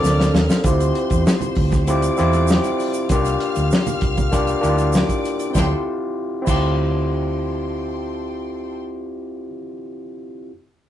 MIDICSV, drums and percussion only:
0, 0, Header, 1, 2, 480
1, 0, Start_track
1, 0, Key_signature, -1, "minor"
1, 0, Tempo, 612245
1, 510, Time_signature, 4, 2, 24, 8
1, 8541, End_track
2, 0, Start_track
2, 0, Title_t, "Drums"
2, 34, Note_on_c, 9, 82, 77
2, 36, Note_on_c, 9, 38, 57
2, 112, Note_off_c, 9, 82, 0
2, 115, Note_off_c, 9, 38, 0
2, 141, Note_on_c, 9, 62, 31
2, 141, Note_on_c, 9, 63, 65
2, 154, Note_on_c, 9, 38, 69
2, 170, Note_on_c, 9, 82, 52
2, 219, Note_off_c, 9, 62, 0
2, 219, Note_off_c, 9, 63, 0
2, 233, Note_off_c, 9, 38, 0
2, 248, Note_off_c, 9, 82, 0
2, 265, Note_on_c, 9, 64, 67
2, 272, Note_on_c, 9, 38, 96
2, 277, Note_on_c, 9, 82, 47
2, 343, Note_off_c, 9, 64, 0
2, 350, Note_off_c, 9, 38, 0
2, 356, Note_off_c, 9, 82, 0
2, 389, Note_on_c, 9, 82, 53
2, 391, Note_on_c, 9, 38, 91
2, 467, Note_off_c, 9, 82, 0
2, 469, Note_off_c, 9, 38, 0
2, 500, Note_on_c, 9, 42, 92
2, 505, Note_on_c, 9, 36, 107
2, 509, Note_on_c, 9, 62, 36
2, 511, Note_on_c, 9, 82, 79
2, 579, Note_off_c, 9, 42, 0
2, 584, Note_off_c, 9, 36, 0
2, 587, Note_off_c, 9, 62, 0
2, 589, Note_off_c, 9, 82, 0
2, 630, Note_on_c, 9, 82, 46
2, 631, Note_on_c, 9, 42, 54
2, 708, Note_off_c, 9, 82, 0
2, 709, Note_off_c, 9, 42, 0
2, 747, Note_on_c, 9, 42, 78
2, 826, Note_off_c, 9, 42, 0
2, 862, Note_on_c, 9, 42, 50
2, 868, Note_on_c, 9, 63, 61
2, 869, Note_on_c, 9, 36, 85
2, 873, Note_on_c, 9, 82, 52
2, 941, Note_off_c, 9, 42, 0
2, 946, Note_off_c, 9, 63, 0
2, 947, Note_off_c, 9, 36, 0
2, 951, Note_off_c, 9, 82, 0
2, 994, Note_on_c, 9, 82, 76
2, 996, Note_on_c, 9, 38, 107
2, 1072, Note_off_c, 9, 82, 0
2, 1074, Note_off_c, 9, 38, 0
2, 1103, Note_on_c, 9, 63, 88
2, 1103, Note_on_c, 9, 64, 88
2, 1110, Note_on_c, 9, 82, 47
2, 1111, Note_on_c, 9, 42, 49
2, 1181, Note_off_c, 9, 63, 0
2, 1181, Note_off_c, 9, 64, 0
2, 1188, Note_off_c, 9, 82, 0
2, 1190, Note_off_c, 9, 42, 0
2, 1218, Note_on_c, 9, 46, 55
2, 1228, Note_on_c, 9, 36, 84
2, 1296, Note_off_c, 9, 46, 0
2, 1306, Note_off_c, 9, 36, 0
2, 1343, Note_on_c, 9, 64, 76
2, 1348, Note_on_c, 9, 42, 53
2, 1349, Note_on_c, 9, 82, 47
2, 1353, Note_on_c, 9, 36, 93
2, 1356, Note_on_c, 9, 38, 33
2, 1422, Note_off_c, 9, 64, 0
2, 1427, Note_off_c, 9, 42, 0
2, 1428, Note_off_c, 9, 82, 0
2, 1431, Note_off_c, 9, 36, 0
2, 1434, Note_off_c, 9, 38, 0
2, 1469, Note_on_c, 9, 82, 73
2, 1470, Note_on_c, 9, 42, 79
2, 1472, Note_on_c, 9, 62, 31
2, 1472, Note_on_c, 9, 63, 67
2, 1548, Note_off_c, 9, 82, 0
2, 1549, Note_off_c, 9, 42, 0
2, 1551, Note_off_c, 9, 62, 0
2, 1551, Note_off_c, 9, 63, 0
2, 1581, Note_on_c, 9, 62, 28
2, 1586, Note_on_c, 9, 42, 56
2, 1589, Note_on_c, 9, 82, 55
2, 1659, Note_off_c, 9, 62, 0
2, 1664, Note_off_c, 9, 42, 0
2, 1668, Note_off_c, 9, 82, 0
2, 1702, Note_on_c, 9, 82, 57
2, 1711, Note_on_c, 9, 63, 69
2, 1719, Note_on_c, 9, 42, 64
2, 1780, Note_off_c, 9, 82, 0
2, 1790, Note_off_c, 9, 63, 0
2, 1797, Note_off_c, 9, 42, 0
2, 1825, Note_on_c, 9, 82, 45
2, 1830, Note_on_c, 9, 42, 57
2, 1832, Note_on_c, 9, 63, 55
2, 1903, Note_off_c, 9, 82, 0
2, 1908, Note_off_c, 9, 42, 0
2, 1911, Note_off_c, 9, 63, 0
2, 1939, Note_on_c, 9, 82, 77
2, 1964, Note_on_c, 9, 38, 113
2, 2018, Note_off_c, 9, 82, 0
2, 2042, Note_off_c, 9, 38, 0
2, 2067, Note_on_c, 9, 82, 44
2, 2070, Note_on_c, 9, 42, 46
2, 2070, Note_on_c, 9, 63, 65
2, 2146, Note_off_c, 9, 82, 0
2, 2148, Note_off_c, 9, 42, 0
2, 2148, Note_off_c, 9, 63, 0
2, 2191, Note_on_c, 9, 82, 42
2, 2195, Note_on_c, 9, 46, 57
2, 2270, Note_off_c, 9, 82, 0
2, 2273, Note_off_c, 9, 46, 0
2, 2302, Note_on_c, 9, 82, 54
2, 2309, Note_on_c, 9, 42, 45
2, 2380, Note_off_c, 9, 82, 0
2, 2387, Note_off_c, 9, 42, 0
2, 2424, Note_on_c, 9, 42, 89
2, 2429, Note_on_c, 9, 36, 111
2, 2429, Note_on_c, 9, 82, 77
2, 2434, Note_on_c, 9, 62, 35
2, 2503, Note_off_c, 9, 42, 0
2, 2507, Note_off_c, 9, 36, 0
2, 2507, Note_off_c, 9, 82, 0
2, 2513, Note_off_c, 9, 62, 0
2, 2547, Note_on_c, 9, 82, 48
2, 2556, Note_on_c, 9, 42, 51
2, 2626, Note_off_c, 9, 82, 0
2, 2635, Note_off_c, 9, 42, 0
2, 2669, Note_on_c, 9, 42, 79
2, 2747, Note_off_c, 9, 42, 0
2, 2786, Note_on_c, 9, 82, 49
2, 2790, Note_on_c, 9, 42, 47
2, 2794, Note_on_c, 9, 63, 66
2, 2865, Note_off_c, 9, 82, 0
2, 2868, Note_off_c, 9, 42, 0
2, 2873, Note_off_c, 9, 63, 0
2, 2909, Note_on_c, 9, 82, 74
2, 2917, Note_on_c, 9, 62, 30
2, 2923, Note_on_c, 9, 38, 95
2, 2987, Note_off_c, 9, 82, 0
2, 2995, Note_off_c, 9, 62, 0
2, 3001, Note_off_c, 9, 38, 0
2, 3031, Note_on_c, 9, 62, 39
2, 3031, Note_on_c, 9, 63, 87
2, 3031, Note_on_c, 9, 64, 93
2, 3031, Note_on_c, 9, 82, 49
2, 3032, Note_on_c, 9, 42, 50
2, 3109, Note_off_c, 9, 82, 0
2, 3110, Note_off_c, 9, 42, 0
2, 3110, Note_off_c, 9, 62, 0
2, 3110, Note_off_c, 9, 63, 0
2, 3110, Note_off_c, 9, 64, 0
2, 3144, Note_on_c, 9, 42, 78
2, 3151, Note_on_c, 9, 36, 86
2, 3223, Note_off_c, 9, 42, 0
2, 3230, Note_off_c, 9, 36, 0
2, 3271, Note_on_c, 9, 64, 65
2, 3272, Note_on_c, 9, 42, 52
2, 3273, Note_on_c, 9, 82, 47
2, 3275, Note_on_c, 9, 36, 94
2, 3349, Note_off_c, 9, 64, 0
2, 3350, Note_off_c, 9, 42, 0
2, 3351, Note_off_c, 9, 82, 0
2, 3354, Note_off_c, 9, 36, 0
2, 3391, Note_on_c, 9, 82, 71
2, 3393, Note_on_c, 9, 36, 83
2, 3393, Note_on_c, 9, 42, 82
2, 3396, Note_on_c, 9, 63, 60
2, 3469, Note_off_c, 9, 82, 0
2, 3472, Note_off_c, 9, 36, 0
2, 3472, Note_off_c, 9, 42, 0
2, 3475, Note_off_c, 9, 63, 0
2, 3506, Note_on_c, 9, 42, 55
2, 3511, Note_on_c, 9, 82, 49
2, 3585, Note_off_c, 9, 42, 0
2, 3590, Note_off_c, 9, 82, 0
2, 3632, Note_on_c, 9, 82, 57
2, 3633, Note_on_c, 9, 63, 64
2, 3640, Note_on_c, 9, 42, 58
2, 3710, Note_off_c, 9, 82, 0
2, 3711, Note_off_c, 9, 63, 0
2, 3718, Note_off_c, 9, 42, 0
2, 3747, Note_on_c, 9, 82, 50
2, 3749, Note_on_c, 9, 42, 53
2, 3751, Note_on_c, 9, 63, 58
2, 3826, Note_off_c, 9, 82, 0
2, 3828, Note_off_c, 9, 42, 0
2, 3830, Note_off_c, 9, 63, 0
2, 3862, Note_on_c, 9, 82, 69
2, 3882, Note_on_c, 9, 38, 110
2, 3940, Note_off_c, 9, 82, 0
2, 3961, Note_off_c, 9, 38, 0
2, 3991, Note_on_c, 9, 36, 69
2, 3993, Note_on_c, 9, 62, 31
2, 3993, Note_on_c, 9, 63, 60
2, 3995, Note_on_c, 9, 42, 47
2, 3995, Note_on_c, 9, 82, 41
2, 4069, Note_off_c, 9, 36, 0
2, 4072, Note_off_c, 9, 62, 0
2, 4072, Note_off_c, 9, 63, 0
2, 4073, Note_off_c, 9, 42, 0
2, 4073, Note_off_c, 9, 82, 0
2, 4114, Note_on_c, 9, 82, 42
2, 4119, Note_on_c, 9, 42, 70
2, 4193, Note_off_c, 9, 82, 0
2, 4197, Note_off_c, 9, 42, 0
2, 4229, Note_on_c, 9, 82, 54
2, 4230, Note_on_c, 9, 42, 47
2, 4308, Note_off_c, 9, 82, 0
2, 4309, Note_off_c, 9, 42, 0
2, 4350, Note_on_c, 9, 82, 78
2, 4351, Note_on_c, 9, 63, 75
2, 4353, Note_on_c, 9, 36, 105
2, 4359, Note_on_c, 9, 38, 89
2, 4428, Note_off_c, 9, 82, 0
2, 4429, Note_off_c, 9, 63, 0
2, 4431, Note_off_c, 9, 36, 0
2, 4438, Note_off_c, 9, 38, 0
2, 5071, Note_on_c, 9, 63, 89
2, 5071, Note_on_c, 9, 82, 79
2, 5075, Note_on_c, 9, 36, 105
2, 5075, Note_on_c, 9, 49, 80
2, 5149, Note_off_c, 9, 63, 0
2, 5149, Note_off_c, 9, 82, 0
2, 5153, Note_off_c, 9, 49, 0
2, 5154, Note_off_c, 9, 36, 0
2, 8541, End_track
0, 0, End_of_file